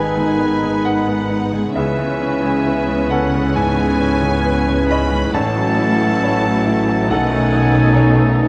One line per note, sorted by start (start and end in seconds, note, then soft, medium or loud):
0.00 1.72 G#1 soft
0.00 1.72 G#2 soft
0.00 1.78 G#2 soft
0.00 0.31 D#3 soft
0.00 1.45 D#3 soft
0.00 0.17 G#3 soft
0.00 1.72 B3 soft
0.00 0.16 D#4 soft
0.00 0.39 D#4 soft
0.00 1.45 D#4 soft
0.00 1.72 D#4 soft
0.00 1.79 A4 soft
0.00 0.86 B4 soft
0.00 1.45 B4 soft
0.00 1.72 B4 soft
0.00 0.85 F#5 soft
0.00 0.86 G#5 soft
0.00 1.78 G#5 soft
0.00 1.45 B5 soft
0.17 0.54 G#3 soft
0.17 0.40 G#4 soft
0.39 0.76 D#4 soft
0.39 0.63 D#4 soft
0.62 0.99 G#3 soft
0.62 0.86 B3 soft
0.84 1.08 G#3 soft
0.84 1.22 B4 soft
0.84 1.72 F#5 medium
0.84 1.76 F#5 soft
1.08 1.44 G#3 soft
1.08 1.31 B3 soft
1.30 1.67 D#4 soft
1.30 1.54 D#4 soft
1.53 1.76 G#3 soft
1.53 1.76 G#4 soft
1.75 3.51 C#2 soft
1.75 5.29 C#2 soft
1.75 5.30 C#3 soft
1.75 3.51 E3 soft
1.75 5.17 B3 soft
1.75 5.30 B3 soft
1.75 1.98 B3 soft
1.75 5.17 C#4 soft
1.75 5.29 C#4 soft
1.75 3.51 C#4 soft
1.75 3.07 G#4 soft
1.75 3.51 B4 soft
1.75 7.06 C#5 soft
1.75 3.08 E5 soft
1.75 3.07 E5 soft
1.75 3.51 G#5 soft
1.99 2.35 G#3 soft
1.99 2.22 C#4 soft
2.20 2.57 C#4 soft
2.20 2.44 E4 soft
2.44 2.80 G#3 soft
2.44 2.67 G#4 soft
2.66 2.89 E4 soft
2.66 3.03 B4 soft
2.89 3.24 G#3 soft
2.89 3.11 C#4 soft
3.10 3.33 B3 soft
3.10 3.46 C#4 soft
3.10 3.53 A4 soft
3.10 3.52 F#5 medium
3.10 3.55 F#5 soft
3.32 3.69 G#3 soft
3.32 3.55 C#4 soft
3.55 3.92 G#2 soft
3.55 5.30 E3 soft
3.55 5.30 C#4 soft
3.55 3.76 E4 soft
3.55 5.30 B4 soft
3.55 4.43 B4 soft
3.55 5.34 G#5 soft
3.55 4.89 G#5 medium
3.55 4.85 G#5 medium
3.76 4.14 G#3 soft
3.76 3.99 G#4 soft
3.98 4.36 C#4 soft
3.98 4.21 E4 soft
4.20 4.58 G#3 soft
4.20 4.44 C#4 soft
4.43 4.66 B3 soft
4.43 4.80 B4 soft
4.65 5.03 G#3 soft
4.65 4.88 C#4 soft
4.87 5.25 C#4 soft
4.87 5.10 E4 soft
4.87 5.32 B5 medium
4.87 5.31 B5 medium
4.91 5.32 D#5 soft
5.10 5.34 G#3 soft
5.10 5.33 G#4 soft
5.32 7.06 A1 soft
5.32 7.06 A1 medium
5.32 7.06 A2 soft
5.32 7.10 E3 soft
5.32 8.48 A3 soft
5.32 5.54 A3 soft
5.32 8.48 A3 soft
5.32 7.06 C#4 soft
5.32 7.05 E4 soft
5.32 7.06 E4 soft
5.32 7.06 A4 soft
5.32 7.12 F#5 soft
5.32 7.06 A5 medium
5.32 7.10 A5 medium
5.36 6.22 C#5 soft
5.55 5.92 F#3 soft
5.55 5.78 C#4 soft
5.77 6.13 E4 soft
5.77 6.01 E4 soft
5.99 6.36 F#3 soft
5.99 6.22 F#4 soft
6.22 6.45 E4 soft
6.22 6.58 C#5 soft
6.45 6.79 F#3 soft
6.45 6.67 C#4 soft
6.66 6.88 A3 soft
6.66 7.01 E4 soft
6.89 7.10 F#3 soft
6.89 7.10 C#4 soft
7.08 8.48 B1 medium
7.08 8.48 B2 soft
7.08 8.48 D#3 medium
7.08 7.29 B3 soft
7.08 8.48 C#4 medium
7.08 8.48 D#4 medium
7.08 8.48 D#4 soft
7.08 8.48 A4 medium
7.08 8.48 C#5 soft
7.08 7.98 F#5 soft
7.08 7.94 F#5 medium
7.08 8.48 G#5 medium
7.12 7.95 A4 soft
7.30 7.66 A3 soft
7.30 7.53 D#4 soft
7.52 7.88 D#4 soft
7.52 7.75 F#4 soft
7.72 8.09 A3 soft
7.72 7.96 A4 soft
7.95 8.19 F#4 soft
7.95 8.32 C#5 soft
8.18 8.48 A3 soft
8.18 8.41 D#4 soft
8.39 8.48 B3 soft
8.39 8.48 D#4 soft